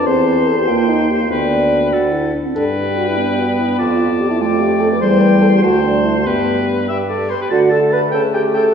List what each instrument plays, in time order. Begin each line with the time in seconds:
0.06 bassoon E2, clarinet C4, french horn C5, oboe C5, flute A5
0.27 french horn B4
0.48 french horn A4
0.58 french horn G4
0.67 bassoon D#2, clarinet A#3, french horn F4, flute G5
0.89 french horn D#4
1.10 french horn G4
1.22 french horn F4
1.29 bassoon D2, clarinet B3, french horn D4, oboe B4, flute G5
1.91 bassoon D2, clarinet F#4, oboe A4, flute F#5
2.12 clarinet E4
2.33 clarinet D4
2.46 clarinet C4
2.54 bassoon G2, clarinet D4, french horn A4, oboe B4, flute G5
2.76 french horn G4
2.97 french horn F#4
3.08 french horn E4
3.17 clarinet B3, french horn D4
3.38 french horn F#4
3.58 french horn E4
3.69 french horn D4
3.78 bassoon F2, french horn F4, oboe D5, flute A5
3.98 french horn F4
4.19 french horn G4
4.30 french horn E4
4.39 clarinet A3, french horn F4, oboe D5, flute G5
4.59 french horn G4
4.80 french horn A4
4.92 french horn B4
5.00 bassoon E2, clarinet G3, french horn C5, oboe C5, flute G5
5.20 french horn B4
5.42 french horn A4
5.53 french horn G4
5.62 bassoon D2, clarinet A3, french horn F#4, oboe C5, flute A5
5.83 french horn D4
6.05 french horn E4
6.16 french horn F#4
6.25 bassoon G2, clarinet B3, french horn G4, oboe B4, flute G5
6.88 clarinet G4, oboe E5, flute G5
7.09 clarinet A4, oboe D5, flute A5
7.30 clarinet B4, oboe C5, flute B5
7.41 clarinet G4, oboe B4, flute G5
7.50 bassoon D3, french horn A3, clarinet F#4, flute F#5, oboe A5
7.69 clarinet A4, oboe A5, flute A5
7.90 clarinet B4, oboe A5, flute B5
8.11 bassoon C#3, clarinet A4, oboe G5, flute A5
8.33 clarinet G4, oboe G5, flute G5
8.54 clarinet A4, oboe G5, flute A5